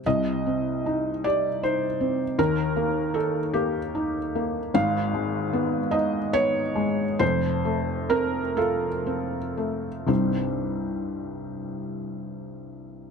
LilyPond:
<<
  \new Staff \with { instrumentName = "Felt piano" } { \time 6/8 \key f \mixolydian \tempo 4. = 49 ees''4. d''8 c''4 | bes'4 a'8 g'4. | f''4. ees''8 des''4 | c''4 bes'8 a'4. |
<c, g, g c' ees' g' c''>2. | }
  \new Staff \with { instrumentName = "Felt piano" } { \time 6/8 \key f \mixolydian <c, c>8 c'8 ees'8 g'8 ees'8 c'8 | <ees, ees>8 bes8 ees'8 bes8 ees'8 bes8 | <aes,, aes,>8 aes8 ces'8 ees'8 ces'8 aes8 | <f,, f,>8 a8 c'8 f'8 c'8 a8 |
r2. | }
>>